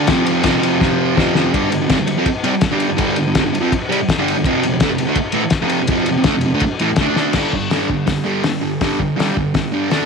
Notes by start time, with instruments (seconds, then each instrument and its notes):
0.07 distorted electric guitar F2 C3, kick, snare, ride
0.12 distorted electric guitar F3
0.25 distorted electric guitar F3, ride
0.31 distorted electric guitar C3
0.43 distorted electric guitar F2 C3, kick, snare, ride
0.49 distorted electric guitar F3
0.61 distorted electric guitar C3 F3, ride
0.81 kick, snare
1.15 distorted electric guitar F2 C3, kick, snare
1.20 distorted electric guitar F3
1.35 distorted electric guitar F3, snare
1.40 distorted electric guitar C3
1.53 distorted electric guitar G2 D3 G3, kick, ride
1.71 distorted electric guitar G2 D3, ride
1.81 distorted electric guitar G2 D3
1.88 distorted electric guitar F2 C3, kick, snare, ride
1.99 distorted electric guitar G2 D3
2.07 distorted electric guitar G2 D3, ride
2.17 distorted electric guitar F3 C4
2.26 muted distorted electric guitar stroke, kick, ride
2.43 distorted electric guitar C3 G3, ride
2.53 muted distorted electric guitar stroke
2.61 kick, snare, ride
2.71 distorted electric guitar G2 D3 G3
2.80 ride
2.89 distorted electric guitar G2 D3
2.97 distorted electric guitar G2 D3 G3, kick, ride
3.16 distorted electric guitar G2 D3, ride
3.27 distorted electric guitar G2 D3
3.35 distorted electric guitar F2, kick, snare, ride
3.39 distorted electric guitar C3
3.44 distorted electric guitar G2 D3
3.53 distorted electric guitar G2 D3, ride
3.61 distorted electric guitar F3 C4
3.72 muted distorted electric guitar stroke, kick, ride
3.89 distorted electric guitar C3 G3, ride
4.01 muted distorted electric guitar stroke
4.09 kick, snare, ride
4.19 distorted electric guitar G2 D3 G3
4.28 ride
4.37 distorted electric guitar G2 D3
4.44 distorted electric guitar F2 C3, kick, ride
4.49 distorted electric guitar F3
4.63 distorted electric guitar F2 C3, ride
4.72 distorted electric guitar F2 C3
4.80 distorted electric guitar D3 A3, kick, snare, ride
4.91 distorted electric guitar F2 C3
4.98 distorted electric guitar F2 C3, ride
5.07 distorted electric guitar D3 A3
5.15 muted distorted electric guitar stroke, kick, ride
5.32 distorted electric guitar A2 E3, ride
5.42 muted distorted electric guitar stroke
5.50 kick, snare, ride
5.61 distorted electric guitar F2 C3 F3
5.69 ride
5.82 distorted electric guitar F2 C3
5.87 distorted electric guitar F2 C3 F3, kick, ride
6.06 distorted electric guitar F2 C3, ride
6.17 distorted electric guitar F2 C3
6.24 distorted electric guitar D3 A3, kick, snare, ride
6.35 distorted electric guitar F2 C3
6.41 distorted electric guitar F2, ride
6.46 distorted electric guitar C3
6.54 distorted electric guitar D3 A3
6.60 kick, ride
6.65 muted distorted electric guitar stroke
6.79 distorted electric guitar A2 E3, ride
6.92 muted distorted electric guitar stroke
6.96 kick, snare, ride
7.00 distorted electric guitar D3 A3 D4
7.16 distorted electric guitar D3 A3 D4, snare
7.33 distorted electric guitar G2, kick, snare, crash
7.37 distorted electric guitar D3 G3
7.53 distorted electric guitar G2 D3, kick
7.70 distorted electric guitar G2 D3 G3, snare, open hi-hat
7.89 distorted electric guitar G2 D3, kick
8.07 distorted electric guitar G2 D3, kick, snare, open hi-hat
8.24 distorted electric guitar G2 D3 G3
8.44 distorted electric guitar G2 D3, snare, open hi-hat
8.62 distorted electric guitar G2 D3
8.81 distorted electric guitar G2 D3 G3, kick, snare, open hi-hat
8.99 distorted electric guitar G2 D3, kick
9.16 distorted electric guitar G2 D3 G3, open hi-hat
9.20 snare
9.36 distorted electric guitar G2 D3, kick
9.54 distorted electric guitar G2 D3, kick, snare, open hi-hat
9.73 distorted electric guitar G2 D3 G3
9.90 distorted electric guitar D3 A3 D4, snare, open hi-hat